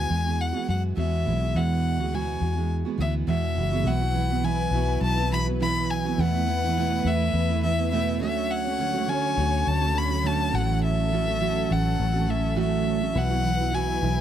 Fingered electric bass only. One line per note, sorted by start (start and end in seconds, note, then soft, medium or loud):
0.10 0.51 E2 medium
0.69 0.95 F#2 medium
0.97 1.28 E2 medium
1.27 1.53 B1 medium
1.55 1.98 E2 loud
1.98 2.38 D2 medium
2.41 2.83 E2 medium
2.98 3.26 D2 medium
3.28 3.58 E2 medium
3.56 3.83 F#1 medium
3.84 4.68 B1 loud
4.71 4.99 B1 medium
5.01 6.14 B1 medium
6.18 7.01 E2 loud
7.05 7.32 E2 medium
7.34 8.21 E2 loud
8.21 9.33 D2 loud
9.38 9.64 D2 loud
9.67 10.50 D2 loud
10.53 11.65 A1 loud
11.71 11.97 A1 medium
12.00 13.11 A1 loud
13.16 13.98 B1 loud
14.03 14.21 B1 medium